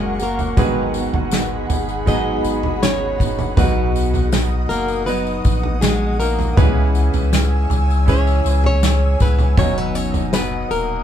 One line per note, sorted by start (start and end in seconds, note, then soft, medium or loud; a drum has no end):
0.00 0.54 F#1 medium
0.00 0.20 F#3 medium
0.00 0.18 G#3 medium
0.00 0.19 A#3 medium
0.00 0.50 A#3 medium
0.00 0.19 C#4 medium
0.00 0.50 C#4 medium
0.00 0.18 F#4 medium
0.00 0.50 F#4 medium
0.00 0.22 G#4 medium
0.00 0.55 A#4 medium
0.00 6.54 F#5 medium
0.00 0.54 C#6 medium
0.19 0.56 F#3 soft
0.19 0.57 A#3 soft
0.19 0.56 A#3 medium
0.19 0.57 C#4 medium
0.19 0.57 F#4 soft
0.19 tambourine medium
0.23 0.59 A#4 medium
0.39 floor tom medium
0.39 tambourine soft
0.56 1.10 G#1 loud
0.56 1.66 G#2 medium
0.56 1.66 D#3 medium
0.56 1.99 F#3 medium
0.56 0.94 G#3 medium
0.56 2.00 G#3 medium
0.56 0.95 B3 medium
0.56 2.00 B3 medium
0.56 1.66 B3 medium
0.56 0.95 D#4 medium
0.56 2.00 D#4 medium
0.56 0.93 F#4 medium
0.56 3.54 G#4 medium
0.56 2.00 G#4 medium
0.56 1.67 B4 medium
0.56 3.54 B5 medium
0.56 kick loud
0.56 floor tom loud
0.56 tambourine soft
0.94 1.31 B3 soft
0.94 1.32 D#4 soft
0.94 1.32 F#4 soft
0.94 tambourine soft
1.13 1.66 G#1 medium
1.13 floor tom medium
1.31 2.05 G#3 medium
1.31 2.06 B3 medium
1.31 2.07 D#4 medium
1.31 2.07 F#4 medium
1.31 snare loud
1.31 tambourine medium
1.69 2.40 G#1 loud
1.69 floor tom medium
1.69 tambourine soft
1.89 tambourine soft
2.06 3.49 F#3 medium
2.06 2.80 G#3 medium
2.06 3.49 G#3 medium
2.06 2.82 B3 medium
2.06 3.50 B3 medium
2.06 2.83 D#4 medium
2.06 3.50 D#4 medium
2.06 2.79 D#4 medium
2.06 2.83 F#4 medium
2.06 3.50 G#4 medium
2.06 2.82 D#5 loud
2.06 kick medium
2.06 tambourine soft
2.44 3.22 G#1 loud
2.44 tambourine medium
2.63 floor tom medium
2.81 3.19 G#3 medium
2.81 3.19 B3 medium
2.81 3.54 C#4 medium
2.81 3.19 D#4 medium
2.81 3.17 F#4 medium
2.81 3.57 C#5 loud
2.81 snare loud
2.81 tambourine medium
3.18 3.55 F#1 medium
3.18 3.56 B3 soft
3.18 3.57 D#4 medium
3.18 3.56 F#4 medium
3.18 kick medium
3.18 tambourine soft
3.39 floor tom medium
3.39 tambourine soft
3.56 4.66 B1 medium
3.56 4.32 B2 medium
3.56 4.66 B2 medium
3.56 4.30 F#3 medium
3.56 4.66 F#3 medium
3.56 4.32 B3 medium
3.56 4.67 B3 medium
3.56 4.32 D#4 medium
3.56 5.00 D#4 medium
3.56 4.33 F#4 medium
3.56 5.01 F#4 medium
3.56 4.69 B4 loud
3.56 6.55 D#5 medium
3.56 6.55 D#6 medium
3.56 kick medium
3.56 floor tom loud
3.56 tambourine medium
3.96 tambourine soft
4.14 floor tom medium
4.14 tambourine soft
4.31 5.06 F#3 medium
4.31 5.07 D#4 medium
4.31 5.07 F#4 medium
4.31 snare loud
4.31 tambourine medium
4.69 5.41 F#1 medium
4.69 5.05 A#3 medium
4.69 5.06 A#4 medium
4.69 tambourine soft
4.88 tambourine soft
5.06 5.80 F#3 medium
5.06 6.50 F#3 medium
5.06 5.81 B3 medium
5.06 5.79 B3 medium
5.06 6.50 D#4 medium
5.06 5.82 D#4 medium
5.06 5.83 F#4 medium
5.06 6.51 F#4 medium
5.06 5.84 B4 medium
5.06 tambourine soft
5.27 tambourine soft
5.45 6.53 A#1 loud
5.45 kick loud
5.45 tambourine soft
5.63 floor tom medium
5.81 6.19 F#3 medium
5.81 6.18 G#3 medium
5.81 6.20 B3 medium
5.81 6.19 D#4 medium
5.81 6.18 F#4 medium
5.81 6.20 G#4 medium
5.81 snare loud
5.81 tambourine medium
6.19 6.56 A#3 medium
6.19 6.58 D#4 medium
6.19 6.57 F#4 medium
6.19 6.57 A#4 medium
6.19 tambourine medium
6.39 floor tom medium
6.39 tambourine soft
6.56 7.10 C#2 loud
6.56 7.32 C#3 medium
6.56 7.66 C#3 medium
6.56 7.31 E3 medium
6.56 7.66 G#3 medium
6.56 7.67 B3 medium
6.56 7.99 C#4 medium
6.56 7.32 C#4 medium
6.56 8.00 E4 medium
6.56 7.33 E4 medium
6.56 8.00 G#4 medium
6.56 7.33 G#4 medium
6.56 7.66 B4 medium
6.56 9.54 C#5 medium
6.56 9.54 G#5 medium
6.56 9.54 E6 medium
6.56 kick loud
6.56 floor tom loud
6.56 tambourine medium
6.95 tambourine soft
7.14 7.66 C#2 medium
7.14 floor tom medium
7.14 tambourine soft
7.32 8.07 E3 medium
7.32 8.07 C#4 medium
7.32 8.07 E4 medium
7.32 8.08 G#4 medium
7.32 snare loud
7.32 tambourine medium
7.70 8.41 C#2 loud
7.70 floor tom medium
7.70 tambourine soft
7.90 tambourine soft
8.06 8.82 C#3 medium
8.06 8.81 E3 medium
8.06 9.49 C#4 medium
8.06 8.82 C#4 medium
8.06 8.61 C#4 medium
8.06 9.50 E4 medium
8.06 8.83 E4 medium
8.06 9.50 G#4 medium
8.06 8.83 G#4 medium
8.06 8.54 C#5 loud
8.06 kick medium
8.06 tambourine soft
8.27 tambourine soft
8.45 9.16 C#2 loud
8.45 tambourine medium
8.54 8.65 B4 loud
8.64 9.17 C#4 medium
8.64 9.21 C#5 loud
8.64 floor tom medium
8.82 9.20 E3 medium
8.82 9.20 C#4 medium
8.82 9.20 E4 medium
8.82 9.18 G#4 medium
8.82 snare loud
8.82 tambourine medium
9.19 9.55 C#2 loud
9.19 9.56 B3 medium
9.19 9.58 C#4 medium
9.19 9.58 E4 medium
9.19 9.57 G#4 medium
9.19 9.58 B4 medium
9.19 kick medium
9.19 tambourine medium
9.39 floor tom medium
9.39 tambourine soft
9.57 10.66 F#1 loud
9.57 10.32 F#2 medium
9.57 11.00 B2 medium
9.57 10.33 D#3 medium
9.57 10.31 F#3 medium
9.57 10.66 F#3 medium
9.57 10.33 B3 medium
9.57 9.76 C#4 medium
9.57 11.00 D#4 medium
9.57 10.33 D#4 medium
9.57 10.34 F#4 medium
9.57 11.01 F#4 medium
9.57 9.78 C#5 medium
9.57 11.03 D#5 medium
9.57 11.03 F#5 medium
9.57 11.03 D#6 medium
9.57 kick loud
9.57 floor tom loud
9.57 tambourine medium
9.78 9.95 B3 medium
9.78 9.95 B4 medium
9.95 10.30 C#4 medium
9.95 10.33 C#5 medium
9.95 tambourine soft
10.14 floor tom medium
10.14 tambourine soft
10.32 11.03 F#3 medium
10.32 10.68 B3 medium
10.32 11.03 D#4 medium
10.32 11.03 F#4 medium
10.32 10.71 B4 medium
10.32 snare loud
10.32 tambourine medium
10.70 11.03 D#1 medium
10.70 11.03 A#3 medium
10.70 11.03 A#4 medium
10.70 tambourine soft